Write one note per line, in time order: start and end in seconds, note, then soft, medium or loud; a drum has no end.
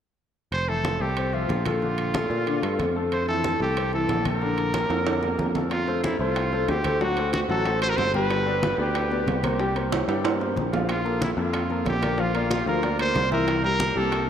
0.52 0.97 F1 medium
0.52 0.70 C5 medium
0.52 high conga soft
0.52 high timbale medium
0.68 0.95 E3 medium
0.68 0.95 E4 medium
0.68 1.03 A4 loud
0.68 high conga soft
0.85 high conga medium
0.85 high timbale medium
0.85 low timbale soft
1.00 1.46 C2 medium
1.00 1.14 A3 medium
1.00 1.35 G4 medium
1.00 1.15 A4 medium
1.17 1.31 C4 medium
1.17 1.31 C5 medium
1.17 high conga soft
1.17 high timbale medium
1.33 1.60 F3 medium
1.33 1.66 F4 medium
1.33 1.60 E5 medium
1.33 high conga soft
1.49 2.25 A#1 medium
1.49 high conga medium
1.49 high timbale medium
1.49 low timbale medium
1.66 1.79 A3 medium
1.66 2.92 F4 medium
1.66 1.79 A4 medium
1.66 high conga medium
1.66 high timbale medium
1.82 2.09 D3 medium
1.82 2.09 D4 medium
1.82 high conga soft
1.98 high conga soft
1.98 high timbale medium
2.14 2.41 A3 medium
2.14 2.41 A4 medium
2.14 high conga medium
2.14 high timbale medium
2.14 low timbale soft
2.30 2.60 A#2 medium
2.30 high conga soft
2.46 2.60 D3 medium
2.46 2.60 D4 medium
2.46 high conga soft
2.46 high timbale medium
2.63 2.78 G2 medium
2.63 2.89 A3 medium
2.63 2.89 A4 medium
2.63 high conga soft
2.63 high timbale medium
2.79 3.55 F2 medium
2.79 high conga medium
2.79 high timbale medium
2.79 low timbale medium
2.96 3.22 A3 medium
2.96 3.23 A4 medium
3.12 3.27 C5 medium
3.12 high conga soft
3.12 high timbale medium
3.28 3.55 E3 medium
3.28 3.55 E4 medium
3.28 3.59 A4 medium
3.28 high conga soft
3.44 high conga medium
3.44 high timbale medium
3.44 low timbale medium
3.60 4.06 C2 medium
3.60 3.74 A3 medium
3.60 3.92 G4 medium
3.60 3.74 A4 medium
3.77 3.90 C4 medium
3.77 3.90 C5 medium
3.77 high conga soft
3.77 high timbale medium
3.93 4.20 E3 medium
3.93 4.20 E4 medium
3.93 4.24 A4 medium
3.93 high conga soft
4.09 4.84 A#1 medium
4.09 high conga medium
4.09 high timbale medium
4.09 low timbale medium
4.25 4.39 A3 medium
4.25 4.39 A4 medium
4.25 5.52 A#4 medium
4.25 high conga medium
4.25 high timbale medium
4.41 4.68 D3 medium
4.41 4.68 D4 medium
4.41 high conga soft
4.58 high conga soft
4.58 high timbale medium
4.74 5.01 A#3 medium
4.74 5.01 A#4 medium
4.74 high conga medium
4.74 high timbale medium
4.74 low timbale medium
4.90 5.35 F2 medium
4.90 high conga soft
4.90 high timbale medium
5.06 5.20 D3 medium
5.06 5.20 D4 medium
5.06 high conga soft
5.06 high timbale medium
5.22 5.49 A#3 medium
5.22 5.49 A#4 medium
5.22 high conga soft
5.22 low timbale medium
5.38 6.14 F2 medium
5.38 high conga medium
5.38 low timbale medium
5.55 5.68 A3 medium
5.55 5.69 A4 medium
5.55 high conga medium
5.55 low timbale medium
5.71 6.01 F4 medium
5.71 high bongo medium
5.71 high conga soft
5.71 high timbale medium
5.87 6.14 A3 medium
5.87 6.14 A4 medium
5.87 6.14 C5 medium
5.87 high bongo soft
5.87 high conga soft
6.04 6.19 E4 medium
6.04 high bongo medium
6.04 high conga medium
6.04 high timbale medium
6.04 low timbale soft
6.19 6.65 C2 medium
6.19 6.47 A3 medium
6.19 6.70 F4 medium
6.19 6.47 A4 medium
6.19 6.47 C5 medium
6.36 high bongo medium
6.36 high conga soft
6.36 high timbale medium
6.52 6.79 A3 medium
6.52 6.79 A4 medium
6.52 6.79 C5 medium
6.52 high bongo soft
6.52 high conga soft
6.68 7.44 D2 medium
6.68 7.03 G4 medium
6.68 high bongo soft
6.68 low bongo medium
6.68 high conga medium
6.68 high timbale medium
6.68 low timbale medium
6.84 6.98 A3 medium
6.84 6.98 A4 medium
6.84 6.98 C5 medium
6.84 high bongo soft
6.84 high conga medium
6.84 high timbale medium
7.01 7.14 F#3 medium
7.01 7.14 F#4 medium
7.01 7.33 F#4 medium
7.01 7.15 F#5 medium
7.01 high bongo medium
7.01 high conga soft
7.17 7.44 A3 medium
7.17 7.44 A4 medium
7.17 7.44 C5 medium
7.17 high bongo soft
7.17 high conga soft
7.17 high timbale medium
7.33 7.41 F#4 medium
7.33 high bongo medium
7.33 high conga medium
7.33 high timbale medium
7.33 low timbale medium
7.49 7.94 A1 medium
7.49 7.63 F#3 medium
7.49 7.63 F#4 medium
7.49 7.80 A4 medium
7.49 7.63 F#5 medium
7.49 high conga soft
7.66 7.79 A3 medium
7.66 7.79 A4 medium
7.66 7.79 C5 medium
7.66 high bongo medium
7.66 high conga soft
7.66 high timbale medium
7.82 8.08 A3 medium
7.82 8.09 A4 medium
7.82 7.91 C5 loud
7.82 8.09 C5 medium
7.82 high bongo soft
7.82 high conga soft
7.82 high timbale medium
7.90 7.98 A#4 medium
7.97 8.73 G1 loud
7.97 8.15 C5 loud
7.97 high bongo soft
7.97 low bongo medium
7.97 high conga medium
7.97 high timbale medium
7.97 low timbale medium
8.14 8.41 G3 medium
8.14 8.41 G4 medium
8.14 8.76 B4 medium
8.14 8.41 G5 medium
8.14 high bongo soft
8.14 high conga medium
8.30 high bongo medium
8.30 high conga soft
8.30 high timbale medium
8.46 8.73 B3 medium
8.46 8.73 B4 medium
8.46 8.73 D5 medium
8.46 high bongo soft
8.46 high conga soft
8.63 high bongo medium
8.63 high conga medium
8.63 high timbale medium
8.63 low timbale medium
8.78 9.24 D2 medium
8.78 9.05 B3 medium
8.78 9.40 G4 medium
8.78 9.06 B4 medium
8.78 9.06 D5 medium
8.95 high bongo medium
8.95 high conga soft
8.95 high timbale medium
9.11 9.37 B3 medium
9.11 9.38 B4 medium
9.11 9.38 D5 medium
9.11 high bongo soft
9.11 high conga soft
9.27 10.02 C2 medium
9.27 high bongo soft
9.27 low bongo medium
9.27 high conga medium
9.27 high timbale medium
9.27 low timbale medium
9.44 9.57 A#3 medium
9.44 10.05 G4 medium
9.44 9.57 A#4 medium
9.44 9.57 C5 medium
9.44 high bongo soft
9.44 high conga medium
9.44 high timbale medium
9.59 9.73 G3 medium
9.59 9.73 G4 medium
9.59 9.73 G5 medium
9.59 high bongo medium
9.59 high conga soft
9.76 10.03 A#3 medium
9.76 10.03 A#4 medium
9.76 10.03 C5 medium
9.76 high bongo soft
9.76 high conga soft
9.76 high timbale medium
9.92 high bongo medium
9.92 high conga medium
9.92 high timbale medium
10.08 10.53 G2 medium
10.08 10.21 G3 medium
10.08 10.22 G4 medium
10.08 10.22 G5 medium
10.08 high conga soft
10.08 high timbale medium
10.24 10.37 A#3 medium
10.24 10.37 A#4 medium
10.24 10.38 C5 medium
10.24 high bongo medium
10.24 high conga soft
10.24 high timbale medium
10.40 10.67 A#3 medium
10.40 10.67 A#4 medium
10.40 10.67 C5 medium
10.40 high bongo soft
10.40 high conga soft
10.40 low timbale medium
10.56 11.32 A#1 medium
10.56 high bongo soft
10.56 low bongo medium
10.56 high conga medium
10.72 10.99 F3 medium
10.72 10.99 F4 medium
10.72 11.00 F5 medium
10.72 high bongo soft
10.72 high conga medium
10.72 low timbale loud
10.89 11.20 F4 medium
10.89 high bongo medium
10.89 high conga soft
10.89 high timbale medium
11.05 11.32 A#3 medium
11.05 11.32 A4 medium
11.05 11.32 A#4 medium
11.05 high bongo soft
11.05 high conga soft
11.21 11.30 E4 medium
11.21 high bongo medium
11.21 high conga medium
11.21 high timbale medium
11.21 low timbale soft
11.37 11.82 F2 medium
11.37 11.64 A#3 medium
11.37 11.84 F4 medium
11.37 11.64 A4 medium
11.37 11.65 A#4 medium
11.53 high bongo medium
11.53 high conga soft
11.53 high timbale medium
11.70 11.97 A#3 medium
11.70 11.97 A4 medium
11.70 11.97 A#4 medium
11.70 high bongo soft
11.70 high conga soft
11.86 12.61 A#1 medium
11.86 12.22 G4 medium
11.86 high bongo soft
11.86 low bongo medium
11.86 high conga medium
11.86 high timbale medium
11.86 low timbale medium
12.02 12.16 A#3 medium
12.02 12.16 A#4 medium
12.02 12.16 D5 medium
12.02 high bongo soft
12.02 high conga medium
12.02 high timbale medium
12.18 12.32 F3 medium
12.18 12.32 F4 medium
12.18 12.52 F4 medium
12.18 12.32 F5 medium
12.18 high bongo medium
12.18 high conga soft
12.34 12.61 A#3 medium
12.34 12.62 A#4 medium
12.34 12.62 D5 medium
12.34 high bongo soft
12.34 high conga soft
12.34 high timbale medium
12.50 12.67 F4 medium
12.50 high bongo medium
12.50 high conga medium
12.50 high timbale medium
12.50 low timbale medium
12.66 13.12 D2 medium
12.66 12.80 F3 medium
12.66 12.80 F4 medium
12.66 12.98 A#4 medium
12.66 12.81 F5 medium
12.66 high conga soft
12.83 12.96 A#3 medium
12.83 12.97 A#4 medium
12.83 12.97 D5 medium
12.83 high bongo medium
12.83 high conga soft
12.83 high timbale medium
12.99 13.26 A#3 medium
12.99 13.26 A#4 medium
12.99 13.30 C5 loud
12.99 13.26 D5 medium
12.99 high bongo soft
12.99 high conga soft
12.99 high timbale loud
13.15 13.90 C2 medium
13.15 high bongo soft
13.15 low bongo medium
13.15 high conga medium
13.15 high timbale medium
13.15 low timbale medium
13.31 13.58 E3 medium
13.31 13.58 E4 medium
13.31 13.62 A#4 medium
13.31 13.58 E5 medium
13.31 high bongo soft
13.31 high conga medium
13.48 high bongo medium
13.48 high conga soft
13.48 high timbale medium
13.64 13.90 G3 medium
13.64 13.90 G4 medium
13.64 13.91 A#4 medium
13.64 13.99 A#4 loud
13.64 high bongo soft
13.64 high conga soft
13.80 high bongo medium
13.80 high conga medium
13.80 high timbale medium
13.80 low timbale medium
13.96 14.30 C2 medium
13.96 14.23 G3 medium
13.96 14.23 A#3 medium
13.96 14.23 G4 medium
13.96 14.28 A4 medium
14.12 high bongo medium
14.12 high conga soft
14.12 high timbale medium